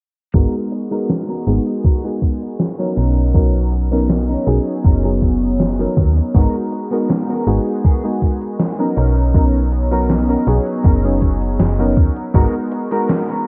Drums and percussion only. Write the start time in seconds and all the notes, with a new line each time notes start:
0.34 kick, closed hi-hat
0.54 closed hi-hat
0.72 closed hi-hat
0.92 closed hi-hat
1.10 snare, closed hi-hat
1.29 closed hi-hat
1.47 closed hi-hat
1.67 closed hi-hat
1.84 kick, closed hi-hat
2.04 closed hi-hat
2.22 kick, closed hi-hat
2.42 closed hi-hat
2.59 snare, closed hi-hat
2.79 closed hi-hat
2.97 closed hi-hat
3.17 closed hi-hat
3.34 kick, closed hi-hat
3.54 closed hi-hat
3.72 closed hi-hat
3.92 closed hi-hat
4.09 snare, closed hi-hat
4.29 closed hi-hat
4.47 closed hi-hat
4.67 closed hi-hat
4.84 kick, closed hi-hat
5.05 closed hi-hat
5.22 kick, closed hi-hat
5.42 closed hi-hat
5.60 snare, closed hi-hat
5.79 closed hi-hat
5.97 kick, closed hi-hat
6.17 closed hi-hat
6.34 kick, closed hi-hat
6.54 closed hi-hat
6.72 closed hi-hat
6.92 closed hi-hat
7.10 snare, closed hi-hat
7.29 closed hi-hat
7.47 closed hi-hat
7.67 closed hi-hat
7.84 kick, closed hi-hat
8.04 closed hi-hat
8.22 kick, closed hi-hat
8.42 closed hi-hat
8.60 snare, closed hi-hat
8.79 closed hi-hat
8.97 closed hi-hat
9.17 closed hi-hat
9.35 kick, closed hi-hat
9.54 closed hi-hat
9.72 closed hi-hat
9.92 closed hi-hat
10.10 snare, closed hi-hat
10.29 closed hi-hat
10.47 closed hi-hat
10.67 closed hi-hat
10.85 kick, closed hi-hat
11.04 closed hi-hat
11.22 kick, closed hi-hat
11.42 closed hi-hat
11.60 snare, closed hi-hat
11.79 closed hi-hat
11.97 kick, closed hi-hat
12.17 closed hi-hat
12.34 kick, closed hi-hat
12.54 closed hi-hat
12.72 closed hi-hat
12.92 closed hi-hat
13.10 snare, closed hi-hat
13.29 closed hi-hat